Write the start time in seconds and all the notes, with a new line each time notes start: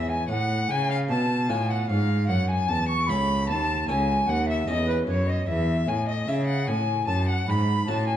Already playing: E2 E4 G#4 C#5 E5
0.10 G#5
0.29 A2 F#5
0.69 C#3 G#5
0.89 F5
1.08 B2 A5
1.48 A2 F4 B4 C#5 G#5
1.69 F#5
1.88 G#2 F5
2.28 F#2 F#5
2.48 G#5
2.68 E2 A5
2.88 C#6
3.07 C#2 C#4 A4 C#5 B5
3.47 D#2 A5
3.88 C#2 C#4 A4 C#5 G#5
4.27 D#2 F#5
4.47 E5
4.51 E5
4.67 E2 C#4 A4 C#5 D#5
4.86 B4
5.07 F#2 C#5
5.27 D#5
5.47 E2 E5
5.88 A2 G#5
6.07 D#5
6.28 C#3 C#4 G#4 C#5 E5
6.47 F#5
6.67 A2 G#5
7.07 F#2 A5
7.28 F#5
7.47 G#2 B5
7.86 A2 C#4 F#4 C#5 A5
8.07 G#5